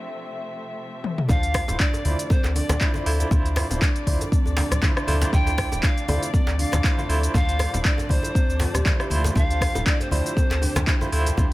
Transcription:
Already playing: string section C3 F3 A3 C4 E5
1.04 high tom
1.18 mid tom
1.28 sub bass D2, string section C3 F3 A3 D4 D5, marimba D4, tine electric piano D4 F4 C5, pan flute F5, kick, djembe tone, high conga, low conga, cabasa
1.43 closed hi-hat, cabasa
1.54 kick, cross-stick, open hi-hat, djembe slap
1.68 sub bass D1, tine electric piano E4 F4 C5, closed hi-hat, djembe tone, low conga, cabasa
1.80 marimba D4, pan flute D5, kick, clap, cabasa
1.94 closed hi-hat, djembe tone, cabasa
2.05 sub bass D2, tine electric piano E4 F4 C5, marimba D5, open hi-hat, high conga
2.19 closed hi-hat, cabasa
2.30 marimba C4, pan flute C5, kick, djembe tone, cabasa
2.44 sub bass D2, clap, djembe slap, cabasa
2.55 marimba D4, pan flute D5, open hi-hat, high conga, djembe tone
2.69 sub bass D2, cross-stick, closed hi-hat, djembe slap, high conga, low conga, cabasa
2.81 marimba D4, tine electric piano E4 F4 C5, kick, clap, cabasa
2.94 tine electric piano E4 F4 C5, djembe tone, high conga, cabasa
3.06 sub bass D2, tine electric piano E4 F4 C5, marimba A4, open hi-hat
3.20 closed hi-hat, djembe tone, cabasa
3.31 sub bass D2, marimba D4, tine electric piano E4 F4 C5, kick, high conga, low conga, cabasa
3.46 closed hi-hat, cabasa
3.56 cross-stick, open hi-hat, djembe slap, djembe tone
3.70 sub bass D1, tine electric piano E4 F4 C5, closed hi-hat, low conga, cabasa
3.81 marimba D4, kick, clap, djembe tone, cabasa
3.96 closed hi-hat, cabasa
4.07 sub bass D2, tine electric piano E4 F4 C5, marimba D5, kick, open hi-hat, high conga
4.21 closed hi-hat, djembe tone, cabasa
4.32 marimba C4, kick, cabasa
4.46 sub bass D2, djembe tone, cabasa
4.57 marimba D4, open hi-hat, djembe slap, high conga
4.71 sub bass D2, cross-stick, closed hi-hat, low conga, cabasa
4.82 marimba D4, tine electric piano E4 F4 C5, kick, clap, djembe tone, high conga, cabasa
4.96 tine electric piano E4 F4 C5, cross-stick, cabasa
5.07 sub bass D2, tine electric piano E4 F4 C5, marimba A4, open hi-hat, high conga, djembe tone
5.21 closed hi-hat, djembe slap, high conga, cabasa
5.33 sub bass D2, marimba D4, tine electric piano E4 F4 C5, pan flute G5, kick, high conga, low conga, cabasa
5.47 closed hi-hat, djembe tone, cabasa
5.58 kick, cross-stick, open hi-hat, djembe slap
5.72 sub bass D1, tine electric piano E4 F4 C5, closed hi-hat, djembe tone, low conga, cabasa
5.83 marimba D4, pan flute F5, kick, clap, cabasa
5.97 closed hi-hat, cabasa
6.08 sub bass D2, tine electric piano E4 F4 C5, marimba D5, open hi-hat, high conga, djembe tone
6.23 closed hi-hat, cabasa
6.34 marimba C4, pan flute D5, kick, djembe tone, cabasa
6.47 sub bass D2, clap, djembe slap, cabasa
6.59 marimba D4, pan flute F5, open hi-hat, high conga
6.72 sub bass D2, cross-stick, closed hi-hat, djembe slap, djembe tone, high conga, low conga, cabasa
6.84 marimba D4, tine electric piano E4 F4 C5, kick, clap, cabasa
6.98 tine electric piano E4 F4 C5, high conga, djembe tone, cabasa
7.09 sub bass D2, tine electric piano E4 F4 C5, marimba A4, open hi-hat
7.23 closed hi-hat, cabasa
7.34 sub bass D2, tine electric piano D4 F4 C5, marimba D4, pan flute F5, kick, high conga, djembe tone, low conga, cabasa
7.49 closed hi-hat, cabasa
7.59 cross-stick, open hi-hat, djembe slap, djembe tone
7.73 sub bass D1, tine electric piano E4 F4 C5, closed hi-hat, low conga, cabasa
7.85 marimba D4, pan flute D5, kick, clap, cabasa
7.98 closed hi-hat, djembe tone, cabasa
8.09 sub bass D2, tine electric piano E4 F4 C5, pan flute C5, marimba D5, kick, open hi-hat, high conga
8.23 closed hi-hat, djembe tone, cabasa
8.35 marimba C4, kick, cabasa
8.49 sub bass D2, cabasa
8.60 marimba F4, open hi-hat, djembe slap, djembe tone, high conga
8.74 sub bass D2, marimba G4, cross-stick, closed hi-hat, low conga, cabasa
8.85 tine electric piano E4 F4 C5, marimba D5, kick, clap, djembe tone, high conga, cabasa
8.99 tine electric piano E4 F4 C5, marimba G4, cross-stick, cabasa
9.10 sub bass D2, marimba A3, tine electric piano E4 F4 C5, open hi-hat, high conga
9.24 closed hi-hat, djembe slap, djembe tone, high conga, cabasa
9.35 sub bass D2, marimba D4, tine electric piano D4 F4 C5, string section G4, pan flute F5, kick, djembe tone, high conga, low conga, cabasa
9.51 closed hi-hat, cabasa
9.61 kick, cross-stick, open hi-hat, djembe slap
9.75 sub bass D1, tine electric piano E4 F4 C5, closed hi-hat, djembe tone, low conga, cabasa
9.86 marimba D4, pan flute D5, kick, clap, cabasa
10.00 pan flute C5, closed hi-hat, djembe tone, cabasa
10.11 sub bass D2, tine electric piano E4 F4 C5, pan flute C5, marimba D5, open hi-hat, high conga
10.26 closed hi-hat, cabasa
10.37 marimba C4, kick, djembe tone, cabasa
10.50 sub bass D2, clap, djembe slap, cabasa
10.62 marimba D4, open hi-hat, djembe tone, high conga
10.76 sub bass D2, cross-stick, closed hi-hat, djembe slap, high conga, low conga, cabasa
10.87 marimba D4, tine electric piano E4 F4 C5, kick, clap, cabasa
11.01 tine electric piano E4 F4 C5, high conga, djembe tone, cabasa
11.12 sub bass D2, tine electric piano E4 F4 C5, marimba A4, open hi-hat
11.26 closed hi-hat, djembe tone, cabasa
11.37 sub bass D2, marimba D4, tine electric piano E4 F4 C5, kick, high conga, low conga, cabasa

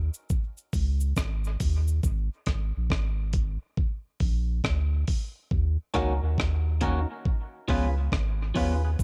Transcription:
Already playing: sub bass D#2
0.14 cabasa
0.30 kick, cabasa
0.57 cabasa
0.73 sub bass C#2, kick, open hi-hat, cabasa
1.00 cabasa
1.16 sub bass G#1, kick, cross-stick, cabasa
1.44 cabasa
1.60 sub bass D#2, kick, open hi-hat, cabasa
1.88 cabasa
2.03 sub bass G#1, kick, cabasa
2.46 sub bass G#1, kick, cross-stick, closed hi-hat
2.77 sub bass A#1
2.90 sub bass G#1, kick, cross-stick
3.33 kick, closed hi-hat
3.77 kick
4.20 sub bass A#1, kick, open hi-hat
4.64 sub bass D2, kick, cross-stick
5.07 kick, open hi-hat
5.51 sub bass D#2, kick
5.94 sub bass C#2, clean electric guitar D#3 A#3 C#4 F#4, synth stab C#4 D#4 F#4 A#4, kick, cross-stick, closed hi-hat
6.22 sub bass D#2
6.38 sub bass D#2, kick, cross-stick
6.81 clean electric guitar D#3 A#3 C#4 F#4, synth stab C#4 D#4 F#4 A#4, kick, closed hi-hat
7.25 kick
7.68 sub bass C#2, clean electric guitar F3 B3 C#4 F4, synth stab C#4 F4 G#4 B4, kick, open hi-hat
8.12 sub bass G#1, kick, cross-stick
8.55 sub bass D#2, clean electric guitar F3 B3 C#4 F4, synth stab C#4 F4 G#4 B4, kick, open hi-hat
8.84 synth stab G#4 B4
8.99 sub bass G#1, kick, cabasa

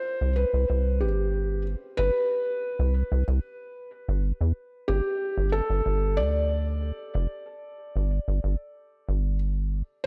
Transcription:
Already playing: felt piano C5
0.21 acid bass C2
0.36 felt piano B4
0.54 acid bass C2
0.70 acid bass C2
1.01 acid bass G1, felt piano G4
1.97 acid bass G1, felt piano B4
2.79 acid bass C2
3.12 acid bass C2
3.28 acid bass C2
4.08 acid bass G1
4.41 acid bass E2
4.88 acid bass G1, felt piano G4
5.37 acid bass G1
5.52 felt piano A4
5.70 acid bass G1
5.86 acid bass G1
6.17 acid bass D2, felt piano D5
7.15 acid bass F1
7.96 acid bass G1
8.28 acid bass G1
8.44 acid bass G1
9.09 acid bass G1

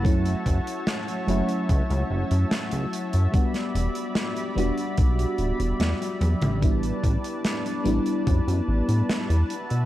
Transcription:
Already playing: analog synth bass F#1, analog synth pad F#4 A5
0.03 fm electric piano F#3 A3 C#4 E4, analog synth pad C#5 E5, kick, closed hi-hat
0.25 closed hi-hat
0.46 analog synth bass F#1, kick, closed hi-hat
0.67 closed hi-hat
0.87 snare, closed hi-hat
1.08 closed hi-hat
1.27 analog synth bass F#1, fm electric piano F#3 A3 C#4 E4, closed hi-hat
1.49 closed hi-hat
1.69 analog synth bass C#2, kick, closed hi-hat
1.90 analog synth bass C#2, closed hi-hat
2.10 analog synth bass F#1
2.31 analog synth bass F#2, closed hi-hat
2.51 snare, closed hi-hat
2.71 analog synth bass C#2, closed hi-hat
2.93 closed hi-hat
3.13 analog synth bass F#2, closed hi-hat
3.32 fm electric piano G3 B3 D4 F#4, analog synth pad G3 D5 B5, kick, closed hi-hat
3.54 snare, closed hi-hat
3.75 analog synth bass E1, closed hi-hat
3.95 closed hi-hat
4.15 snare, closed hi-hat
4.37 closed hi-hat
4.55 analog synth bass E1, fm electric piano G3 B3 D4 F#4, closed hi-hat
4.78 closed hi-hat
4.98 analog synth bass B1, kick, closed hi-hat
5.19 closed hi-hat
5.38 analog synth bass D1, closed hi-hat
5.60 analog synth bass E1, closed hi-hat
5.80 analog synth bass E2, snare, closed hi-hat
6.02 closed hi-hat
6.21 analog synth bass E2, closed hi-hat, high tom
6.42 analog synth bass A1, closed hi-hat, mid tom
6.61 fm electric piano G3 B3 D4 E4, analog synth pad B4 D5 A5, kick, closed hi-hat
6.83 closed hi-hat
7.04 analog synth bass A1, kick, closed hi-hat
7.24 closed hi-hat
7.45 snare, closed hi-hat
7.66 closed hi-hat
7.84 analog synth bass A1, fm electric piano G3 B3 D4 E4, closed hi-hat
8.06 closed hi-hat
8.27 analog synth bass F#2, kick, closed hi-hat
8.47 analog synth bass F#2, closed hi-hat
8.68 analog synth bass A1
8.88 analog synth bass A2, closed hi-hat
9.09 snare, closed hi-hat
9.30 analog synth bass E2, closed hi-hat
9.49 analog synth pad F#4 E5, closed hi-hat
9.70 analog synth bass B2, closed hi-hat

